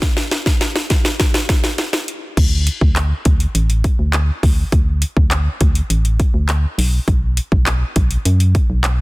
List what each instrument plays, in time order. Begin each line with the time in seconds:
0.02 kick, snare, closed hi-hat
0.17 snare
0.31 snare, closed hi-hat
0.46 kick, snare
0.61 snare, closed hi-hat
0.76 snare
0.90 kick, snare, closed hi-hat
1.05 snare
1.20 kick, snare, closed hi-hat
1.34 snare
1.49 kick, snare, closed hi-hat
1.64 snare
1.78 snare, closed hi-hat
1.93 snare
2.08 closed hi-hat
2.37 fm bass D2, kick, closed hi-hat, crash
2.67 closed hi-hat
2.81 fm bass D2, kick
2.96 clap, closed hi-hat
3.25 fm bass D2, kick, closed hi-hat
3.40 closed hi-hat
3.55 fm bass A1, closed hi-hat
3.70 closed hi-hat
3.84 kick, closed hi-hat
3.99 fm bass D2
4.13 clap, closed hi-hat
4.43 fm bass D2, kick, open hi-hat
4.72 fm bass D2, kick, closed hi-hat
5.02 closed hi-hat
5.17 fm bass D2, kick
5.31 clap, closed hi-hat
5.61 fm bass D2, kick, closed hi-hat
5.75 closed hi-hat
5.90 fm bass A1, closed hi-hat
6.05 closed hi-hat
6.20 kick, closed hi-hat
6.34 fm bass D2
6.49 clap, closed hi-hat
6.78 fm bass B1, open hi-hat
7.08 fm bass B1, kick, closed hi-hat
7.37 closed hi-hat
7.52 fm bass B1, kick
7.66 clap, closed hi-hat
7.96 fm bass B1, kick, closed hi-hat
8.11 closed hi-hat
8.25 fm bass F#2, closed hi-hat
8.40 closed hi-hat
8.55 kick, closed hi-hat
8.70 fm bass B1
8.84 clap, closed hi-hat